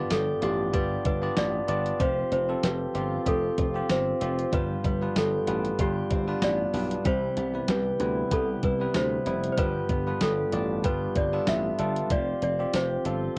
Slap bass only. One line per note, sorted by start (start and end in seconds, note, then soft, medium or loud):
0.11 0.33 G1 medium
0.42 0.75 A1 loud
0.73 0.96 G1 loud
1.05 1.28 G1 loud
1.37 1.60 A1 loud
1.68 1.91 G1 loud
2.00 2.23 F1 loud
2.31 2.54 F1 loud
2.63 2.86 F1 loud
2.95 3.17 G1 medium
3.26 3.49 F1 loud
3.58 3.81 F1 loud
3.90 4.12 G1 medium
4.21 4.44 F1 medium
4.53 4.75 G1 loud
4.84 5.07 G1 medium
5.16 5.38 G1 loud
5.47 5.70 A1 medium
5.79 6.02 G1 loud
6.11 6.33 G1 loud
6.42 6.65 A1 medium
6.74 6.96 B1 loud
7.05 7.28 C2 loud
7.37 7.59 C2 loud
7.68 7.91 C2 medium
8.00 8.23 D2 loud
8.31 8.54 C2 loud
8.63 8.86 C2 medium
8.95 9.17 D2 loud
9.26 9.49 F1 loud
9.58 9.81 G1 loud
9.89 10.12 G1 loud
10.21 10.44 G1 loud
10.53 10.85 A1 loud
10.84 11.07 G1 loud
11.16 11.39 G1 loud
11.47 11.70 A1 loud
11.79 12.02 G1 medium
12.10 12.33 F1 loud
12.42 12.65 F1 loud
12.74 12.96 F1 medium
13.05 13.28 G1 medium